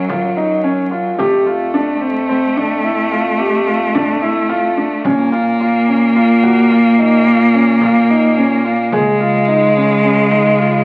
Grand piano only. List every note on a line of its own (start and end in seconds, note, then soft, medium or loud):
0.09 0.31 F4 medium
0.37 0.59 D#4 medium
0.64 0.86 C#4 medium
0.91 1.14 F4 medium
1.19 1.41 G4 medium
1.46 1.69 F4 medium
1.74 1.96 D4 medium
2.01 2.24 C4 medium
2.29 2.52 C4 medium
2.57 2.79 D4 medium
2.84 3.06 E4 medium
3.11 3.34 F4 medium
3.39 3.62 G4 medium
3.67 3.89 F4 medium
3.95 4.17 D4 medium
4.22 4.44 E4 medium
4.49 4.72 F4 medium
4.77 5.00 D4 medium
5.06 5.28 C#4 loud
5.32 5.55 F4 medium
5.61 5.83 F4 medium
5.88 6.11 C#4 medium
6.16 6.38 F4 medium
6.43 6.65 F#4 medium
6.71 6.93 F4 medium
6.99 7.21 D#4 medium
7.27 7.49 F4 medium
7.54 7.76 C#4 medium
7.83 8.04 F4 medium
8.10 8.32 D#4 medium
8.38 8.59 C#4 medium
8.64 8.86 F4 medium
8.93 9.15 G#4 loud
9.20 9.42 F4 medium
9.48 9.70 D#4 medium
9.77 9.98 C#4 medium
10.04 10.25 C#4 medium
10.32 10.53 D#4 medium
10.59 10.80 F4 medium